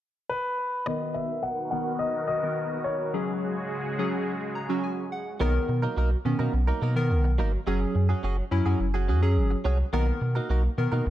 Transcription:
0.30 grand piano B4
0.86 synth keys D#3 B3 A#4, supersaw synth D#3 B3 F#4 A#4, grand piano D#5
1.14 grand piano E5
1.43 grand piano F#5
1.71 synth keys D#3 B3 A#4, grand piano F#5
1.99 grand piano D#5
2.27 grand piano D#5
2.43 synth keys D#3 B3 A#4
2.84 grand piano C#5
3.14 supersaw synth C#3 G#3 F#4 G#4, synth keys F#3 C#4 G#4
3.99 synth keys F#3 C#4 G#4
4.55 synth keys A#5
4.69 synth keys F#3 C#4 F#4
4.84 synth keys G#5
5.12 synth keys F#5
5.40 sub bass B1, synth keys D#3 B3 A#4, clean electric guitar F#3 A#3 D#4 A#4
5.54 muted clean electric guitar stroke
5.68 sub bass B2, muted clean electric guitar stroke
5.82 clean electric guitar F#3 A#3 D#4 A#4
5.97 sub bass B1, clean electric guitar F#3 A#3 D#4 A#4
6.11 muted clean electric guitar stroke
6.25 sub bass B2, synth keys D#3 B3 C#4, muted clean electric guitar stroke
6.39 sub bass B2, clean electric guitar F#3 A#3 D#4 A#4
6.53 sub bass B1, muted clean electric guitar stroke
6.67 clean electric guitar F#3 A#3 D#4 A#4
6.82 sub bass B2, clean electric guitar F#3 A#3 D#4 A#4
6.96 synth keys D#3 B3 A#4
7.10 sub bass B1, muted clean electric guitar stroke
7.24 muted clean electric guitar stroke
7.38 sub bass G1, clean electric guitar F#3 A#3 D#4 A#4
7.53 muted clean electric guitar stroke
7.67 sub bass F#1, clean electric guitar F#3 C#4 F#4 G#4, synth keys F#3 C#4 G#4
7.81 muted clean electric guitar stroke
7.95 sub bass F#2, muted clean electric guitar stroke
8.09 clean electric guitar F#3 C#4 F#4 G#4
8.23 sub bass F#1, clean electric guitar F#3 C#4 F#4 G#4
8.37 muted clean electric guitar stroke
8.51 sub bass F#2, synth keys F#3 C#4 E4, muted clean electric guitar stroke
8.66 sub bass F#2, clean electric guitar F#3 C#4 F#4 G#4
8.80 sub bass F#1, muted clean electric guitar stroke
8.94 clean electric guitar F#3 C#4 F#4 G#4
9.08 sub bass F#2, clean electric guitar F#3 C#4 F#4 G#4
9.22 synth keys F#3 C#4 G#4, muted clean electric guitar stroke
9.37 sub bass F#1
9.51 muted clean electric guitar stroke
9.64 sub bass C2, clean electric guitar F#3 C#4 F#4 G#4
9.79 muted clean electric guitar stroke
9.93 sub bass B1, synth keys D#3 B3 A#4, clean electric guitar A#3 D#4 F#4 A#4
10.07 muted clean electric guitar stroke
10.21 sub bass B2, muted clean electric guitar stroke
10.35 clean electric guitar A#3 D#4 F#4 A#4
10.49 sub bass B1, clean electric guitar A#3 D#4 F#4 A#4
10.64 muted clean electric guitar stroke
10.78 sub bass B2, synth keys D#3 B3 A#4, muted clean electric guitar stroke
10.92 sub bass B2, clean electric guitar A#3 D#4 F#4 A#4
11.06 sub bass B1, muted clean electric guitar stroke

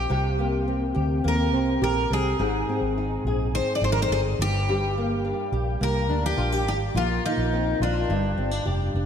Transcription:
Already playing: nylon-string guitar A#3 C4, steel-string acoustic guitar G4
0.10 fingered electric bass C2, nylon-string guitar C3 G4
0.39 nylon-string guitar A#3
0.68 nylon-string guitar C4
0.95 fingered electric bass D2, nylon-string guitar G4
1.24 fingered electric bass D#2, nylon-string guitar A#3, steel-string acoustic guitar A#4
1.53 fingered electric bass C2, nylon-string guitar C4
1.82 fingered electric bass A#1, nylon-string guitar G4, steel-string acoustic guitar A#4
2.11 fingered electric bass C2, nylon-string guitar C4, steel-string acoustic guitar G#4
2.39 fingered electric bass G#1, nylon-string guitar G#2 G#4
2.69 nylon-string guitar C4
2.81 fingered electric bass G#1
2.98 nylon-string guitar D#4
3.25 fingered electric bass A#1, nylon-string guitar G#4
3.55 nylon-string guitar C4, steel-string acoustic guitar C5
3.75 steel-string acoustic guitar D5
3.82 fingered electric bass G#1, nylon-string guitar D#4, steel-string acoustic guitar C5
3.92 steel-string acoustic guitar A#4
4.02 steel-string acoustic guitar C5
4.10 fingered electric bass G1, nylon-string guitar G#4, steel-string acoustic guitar C5
4.39 fingered electric bass G1, nylon-string guitar G2, steel-string acoustic guitar G4
4.68 nylon-string guitar G2 G4
4.98 nylon-string guitar A#3
5.25 nylon-string guitar D4
5.52 fingered electric bass A#1, nylon-string guitar G4
5.81 fingered electric bass C2, nylon-string guitar A#3, steel-string acoustic guitar A#4
6.09 fingered electric bass D2, nylon-string guitar D4
6.26 steel-string acoustic guitar G4
6.37 fingered electric bass A#1, nylon-string guitar F4
6.52 nylon-string guitar G4
6.66 fingered electric bass G#1, nylon-string guitar D4, steel-string acoustic guitar G4
6.95 fingered electric bass A#1, nylon-string guitar A#2 F4, steel-string acoustic guitar F4
7.25 nylon-string guitar A#3, steel-string acoustic guitar D#4
7.37 fingered electric bass A#1
7.53 nylon-string guitar C4
7.80 fingered electric bass A#1, steel-string acoustic guitar D4, nylon-string guitar F4
8.09 fingered electric bass G1, nylon-string guitar G2
8.37 fingered electric bass G1, nylon-string guitar C4
8.51 nylon-string guitar D4
8.65 fingered electric bass F1, nylon-string guitar G4
8.94 fingered electric bass F1, nylon-string guitar D4

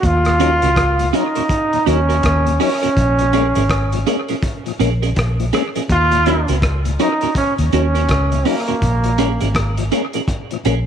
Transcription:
0.03 fingered electric bass D#2, trombone F4, kick, closed hi-hat
0.25 tonewheel organ D#2 A#2, cross-stick, closed hi-hat
0.40 tonewheel organ F#3 C#4 D#4, clean electric guitar C#4 F#4 A#4, closed hi-hat
0.62 fingered electric bass C#2, tonewheel organ D#2 A#2, clean electric guitar C#4 F#4 A#4, closed hi-hat
0.76 kick, cross-stick, closed hi-hat
0.99 tonewheel organ D#2 A#2, closed hi-hat
1.11 tonewheel organ F#3 C#4, clean electric guitar C#4 F#4 A#4, trombone F4, closed hi-hat
1.15 tonewheel organ D#4, trombone D#4
1.35 tonewheel organ D#2 A#2, clean electric guitar C#4 F#4 A#4, closed hi-hat
1.49 kick, closed hi-hat
1.73 tonewheel organ D#2 A#2, closed hi-hat
1.86 fingered electric bass D#2, tonewheel organ F#3 C#4 D#4, clean electric guitar C#4 F#4 A#4, trombone C#4, closed hi-hat
2.09 clean electric guitar C#4 F#4 A#4, closed hi-hat
2.23 fingered electric bass D#2, kick, cross-stick, closed hi-hat
2.46 tonewheel organ D#2 A#2, closed hi-hat
2.60 tonewheel organ F#3 C#4 D#4, clean electric guitar C#4 F#4 A#4, trombone C#4, open hi-hat
2.82 tonewheel organ D#2 A#2, clean electric guitar C#4 F#4 A#4, closed hi-hat
2.97 fingered electric bass A#1, kick, closed hi-hat
3.19 tonewheel organ A#2 F3, closed hi-hat
3.33 tonewheel organ G#3 A#3 C#4, clean electric guitar C#4 G#4 A#4, closed hi-hat
3.55 fingered electric bass G#1, tonewheel organ A#2 F3, clean electric guitar C#4 G#4 A#4, closed hi-hat
3.70 kick, cross-stick, closed hi-hat
3.92 tonewheel organ A#2 F3, closed hi-hat
4.07 tonewheel organ G#3 A#3 C#4, clean electric guitar C#4 G#4 A#4, closed hi-hat
4.28 tonewheel organ A#2 F3, clean electric guitar C#4 G#4 A#4, closed hi-hat
4.43 kick, closed hi-hat
4.66 tonewheel organ A#2 F3, closed hi-hat
4.79 fingered electric bass A#1, tonewheel organ G#3 A#3 C#4, clean electric guitar C#4 G#4 A#4, closed hi-hat
5.02 clean electric guitar C#4 G#4 A#4, closed hi-hat
5.16 fingered electric bass A#1, kick, cross-stick, closed hi-hat
5.40 tonewheel organ A#2 F3, closed hi-hat
5.53 tonewheel organ G#3 A#3 C#4, clean electric guitar C#4 G#4 A#4, cross-stick, closed hi-hat
5.75 tonewheel organ A#2 F3, clean electric guitar C#4 G#4 A#4, closed hi-hat
5.89 fingered electric bass D#2, trombone F4, kick, closed hi-hat
6.11 tonewheel organ D#2 A#2, closed hi-hat
6.26 tonewheel organ F#3 C#4 D#4, clean electric guitar C#4 F#4 A#4, closed hi-hat
6.48 fingered electric bass C#2, tonewheel organ D#2 A#2, clean electric guitar C#4 F#4 A#4, closed hi-hat
6.62 kick, cross-stick, closed hi-hat
6.85 tonewheel organ D#2 A#2, closed hi-hat
6.99 tonewheel organ F#3 C#4 D#4, clean electric guitar C#4 F#4 A#4, trombone D#4, closed hi-hat
7.21 tonewheel organ D#2 A#2, clean electric guitar C#4 F#4 A#4, closed hi-hat
7.35 trombone C#4, kick, closed hi-hat
7.58 fingered electric bass D#2, tonewheel organ D#2 A#2, closed hi-hat
7.72 fingered electric bass D#2, tonewheel organ F#3 C#4 D#4, clean electric guitar C#4 F#4 A#4, trombone C#4, closed hi-hat
7.95 clean electric guitar C#4 F#4 A#4, closed hi-hat
8.09 fingered electric bass C#2, kick, cross-stick, closed hi-hat
8.32 tonewheel organ D#2 A#2, closed hi-hat
8.45 tonewheel organ F#3 C#4 D#4, trombone A#3, clean electric guitar C#4 F#4 A#4, open hi-hat
8.68 tonewheel organ D#2 A#2, clean electric guitar C#4 F#4 A#4, closed hi-hat
8.82 fingered electric bass A#1, kick, closed hi-hat
9.04 tonewheel organ A#2 F3, closed hi-hat
9.18 tonewheel organ G#3 A#3 C#4, clean electric guitar C#4 G#4 A#4, closed hi-hat
9.41 fingered electric bass G#1, tonewheel organ A#2 F3, clean electric guitar C#4 G#4 A#4, closed hi-hat
9.55 kick, cross-stick, closed hi-hat
9.77 tonewheel organ A#2 F3, closed hi-hat
9.92 tonewheel organ G#3 A#3 C#4, clean electric guitar C#4 G#4 A#4, closed hi-hat
10.13 tonewheel organ A#2 F3, clean electric guitar C#4 G#4 A#4, closed hi-hat
10.28 kick, closed hi-hat
10.51 tonewheel organ A#2 F3, closed hi-hat
10.65 fingered electric bass A#1, tonewheel organ G#3 A#3 C#4, clean electric guitar C#4 G#4 A#4, closed hi-hat

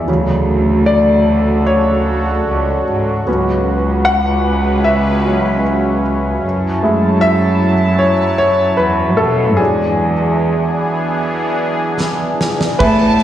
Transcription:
Already playing: grand piano D4
0.07 cello section D2, analog synth pad C#3 F#4 A4, grand piano C#3 E3 F#3
0.86 grand piano D5
1.67 grand piano C#5
2.47 cello section C#2
2.87 cello section G#2
3.27 cello section C#2, analog synth pad C#3 C#4 B4, grand piano F#3 B3 C#4
4.05 grand piano F#5
4.84 grand piano E5
5.26 grand piano F#3 B3 C#4
6.43 cello section F#2, analog synth pad F#3 E4 A5
6.83 grand piano G#3 A3 E4
7.21 grand piano E5
7.99 grand piano C#5
8.38 grand piano C#5
8.77 cello section E2, grand piano B4
9.17 cello section B2, grand piano A4
9.57 cello section E2, grand piano F#3 G#3 D4 G#4, analog synth pad B3 D4 G#4
9.61 analog synth pad E3
12.00 snare
12.41 snare
12.61 snare
12.79 cello section A2, grand piano A3 B3 E4 B4, analog synth pad A3 B3 E4, violin section A5, kick, crash
13.20 ride

